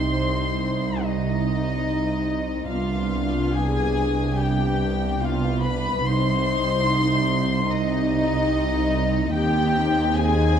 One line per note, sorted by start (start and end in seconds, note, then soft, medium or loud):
0.00 2.67 C2 soft
0.00 0.98 C4 soft
0.00 0.97 D#4 soft
0.00 1.01 C5 soft
0.00 1.01 C6 medium
1.00 2.68 C4 soft
1.00 2.70 D#4 soft
1.00 2.68 D#4 soft
1.00 2.71 D#5 medium
2.69 6.02 C2 soft
2.69 6.03 C2 soft
2.69 4.36 B3 soft
2.69 4.35 D4 soft
2.69 3.53 F4 soft
2.69 3.52 F5 medium
3.53 4.38 G#4 medium
3.53 4.38 G#5 medium
4.37 5.20 B3 soft
4.37 5.20 D4 soft
4.37 5.22 G4 soft
4.37 5.23 G5 medium
5.22 6.05 B3 soft
5.22 6.05 D4 soft
5.22 5.64 F4 soft
5.22 5.65 F5 medium
5.63 6.06 B4 medium
5.63 6.05 B5 medium
6.05 9.32 C2 soft
6.05 9.32 C2 medium
6.05 7.67 C4 soft
6.05 7.67 D#4 medium
6.05 7.70 C5 soft
6.05 7.71 C6 medium
7.69 9.33 C4 soft
7.69 9.32 D#4 medium
7.69 9.33 D#4 medium
7.69 9.35 D#5 medium
9.34 10.60 D#2 medium
9.34 10.60 C4 medium
9.34 10.60 D#4 medium
9.34 10.16 G4 medium
9.34 10.15 G5 medium
10.16 10.60 G#4 medium
10.16 10.60 G#5 medium